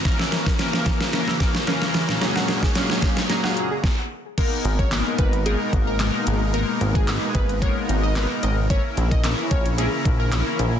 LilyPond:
<<
  \new Staff \with { instrumentName = "Digital synth lead" } { \time 4/4 \key gis \minor \tempo 4 = 111 r1 | r1 | ais'16 r8 cis''16 r8 b'8 gis'16 r8 ais'16 r4 | ais'16 r8 gis'16 r8 b'8 cis''16 r8 dis''16 b'16 r16 dis''16 r16 |
cis''16 r8 dis''16 r8 cis''8 gis'16 r8 ais'16 r4 | }
  \new Staff \with { instrumentName = "Synth pluck" } { \time 4/4 \key gis \minor ais'''16 e'''16 ais''16 ais'16 cis'16 r16 e16 r16 ais'''16 e'''16 r16 ais'16 cis'16 r16 e16 ais,16 | ais''16 fis''16 ais'16 gis'16 cis'16 r16 fis16 r16 ais''16 fis''16 r16 gis'16 r4 | r1 | r1 |
r1 | }
  \new Staff \with { instrumentName = "Analog polysynth" } { \time 4/4 \key gis \minor <e ais cis' ais'>4 <e ais cis' ais'>4 <e ais cis' ais'>4 <e ais cis' ais'>4 | <ais, fis ais cis' gis'>4 <ais, fis ais cis' gis'>4 <ais, fis ais cis' gis'>4 r4 | <gis ais b dis' ais'>4 <gis ais b dis' ais'>4 <gis ais b dis' ais'>4 <gis ais b dis' ais'>4 | <gis ais b dis' ais'>4 <gis ais b dis' gis'>4 <gis ais b dis' ais'>4 <gis ais b dis' ais'>4 |
<cis' e' ais'>4 <cis' e' ais'>4 <cis' e' ais'>4 <cis' e' ais'>4 | }
  \new Staff \with { instrumentName = "Supersaw synth" } { \time 4/4 \key gis \minor << { <cis ais''>1~ | <cis ais''>2. r4 | <b, ais'>1~ | <b, ais'>1 |
<cis e'>1 | } \\ { <ais e'>1 | <gis fis'>2. r4 | <gis dis'>1~ | <gis dis'>1 |
<e ais>1 | } >> }
  \new Staff \with { instrumentName = "Analog synth bass" } { \clef bass \time 4/4 \key gis \minor r1 | r1 | r8 gis,,4 gis,,4 gis,,4 gis,,8~ | gis,,8 gis,,4 gis,,4 gis,,4 gis,,8~ |
gis,,8 ais,,4 ais,,4 ais,,4 ais,,8 | }
  \new DrumStaff \with { instrumentName = "Drums" } \drummode { \time 4/4 <hh bd sn>16 sn16 <hh sn>16 <hh bd sn>16 <hh sn>16 sn16 <hh bd sn>16 <hh sn>16 <hh sn>16 sn16 <hh bd sn>16 sn16 <hh sn>16 sn16 <hh sn>16 sn16 | <hh sn>16 sn16 <hh sn>16 <bd sn>16 <hh sn>16 sn16 <hh bd sn>16 <hh sn>16 <hh sn>16 sn16 hh8 <bd sn>4 | <cymc hh bd>8 hh16 <hh bd>16 <hc hh sn>8 <hh bd>16 hh16 hh8 <hh bd>8 <hc hh sn>8 hh8 | hh8 hh16 <hh bd>16 <hc hh sn>8 <hh bd>16 hh16 <hh bd>8 hh8 <hc hh sn>8 hh8 |
<hh bd>8 hh16 <hh bd>16 <hc hh sn>8 <hh bd>16 hh16 hh8 <hh bd>8 <hc hh sn>8 hh8 | }
>>